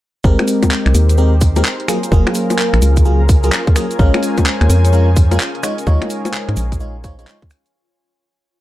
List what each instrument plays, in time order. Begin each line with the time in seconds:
0.24 fm bass G#1, fm electric piano G#3 C4 G4 A#4, analog synth pad C4 D#4 G4 A#4, ambient pad C5, kick, shaker
0.39 finger snap, closed hi-hat, high bongo
0.44 ambient pad A#4, open hi-hat, shaker
0.63 kick, closed hi-hat, high bongo, shaker
0.71 clap, shaker
0.86 fm bass C2, finger snap, closed hi-hat
0.95 fm bass D#2, open hi-hat, shaker
1.09 closed hi-hat, shaker
1.17 fm electric piano G#3 C4 G4 A#4, shaker
1.41 kick, open hi-hat, shaker
1.56 fm electric piano G#3 C4 G4 A#4, closed hi-hat, high bongo, shaker
1.65 clap, shaker
1.80 closed hi-hat
1.88 fm electric piano F#3 A#3 F4 G#4, analog synth pad C#4 F4 G#4, ambient pad F4, finger snap, open hi-hat, shaker
2.03 closed hi-hat, shaker
2.12 fm bass F#1, fm electric piano F#3 A#3 F4 G#4, kick, shaker
2.27 ambient pad G#5, finger snap, closed hi-hat, high bongo
2.34 open hi-hat, shaker
2.50 closed hi-hat, high bongo, shaker
2.59 clap, shaker
2.73 fm bass A#1, finger snap, closed hi-hat
2.82 fm bass C#2, open hi-hat, shaker
2.97 kick, closed hi-hat, shaker
3.05 fm electric piano F#3 A#3 F4 G#4, shaker
3.29 kick, open hi-hat, shaker
3.43 fm electric piano F#3 A#3 F4 G#4, closed hi-hat, shaker
3.52 clap, shaker
3.67 kick, closed hi-hat
3.76 fm electric piano F#3 A#3 F4 G#4, finger snap, open hi-hat, shaker
3.91 closed hi-hat, shaker
3.99 fm bass A#1, fm electric piano G#3 C#4 F4 A#4, ambient pad C#4, analog synth pad F4 C5, vibraphone C#5, kick, shaker
4.14 finger snap, closed hi-hat, high bongo
4.23 open hi-hat, shaker
4.38 vibraphone C5, kick, closed hi-hat, high bongo, shaker
4.46 clap, shaker
4.61 fm bass D#2, vibraphone C#5, finger snap, closed hi-hat
4.70 fm bass F2, open hi-hat, shaker
4.85 vibraphone C#5, closed hi-hat, shaker
4.93 fm electric piano G#3 C#4 F4 A#4, shaker
5.16 kick, open hi-hat, shaker
5.31 fm electric piano G#3 C#4 F4 A#4, closed hi-hat, high bongo, shaker
5.40 clap, shaker
5.55 closed hi-hat
5.63 fm electric piano G#3 D#4 F4 C#5, ambient pad F4, analog synth pad G#4 A#4, finger snap, open hi-hat, shaker
5.78 closed hi-hat, shaker
5.87 fm bass D#2, fm electric piano G#3 D#4 F4 C#5, vibraphone C#5, kick, shaker
5.97 ambient pad C#5
6.02 finger snap, closed hi-hat, high bongo
6.10 open hi-hat, shaker
6.25 vibraphone C5, closed hi-hat, high bongo, shaker
6.34 clap, shaker
6.49 fm bass G#2, finger snap, closed hi-hat
6.56 fm bass A#1, open hi-hat, shaker
6.72 kick, closed hi-hat, shaker
6.80 fm electric piano G#3 D#4 F4 C#5, shaker
7.04 fm electric piano G#3 D#4 F4 C#5, vibraphone C5, kick, open hi-hat, shaker
7.19 fm electric piano G#3 D#4 F4 C#5, closed hi-hat, shaker
7.27 fm electric piano G#3 D#4 F4 C#5, clap, shaker
7.42 kick, closed hi-hat
7.50 finger snap, open hi-hat, shaker
7.66 closed hi-hat, shaker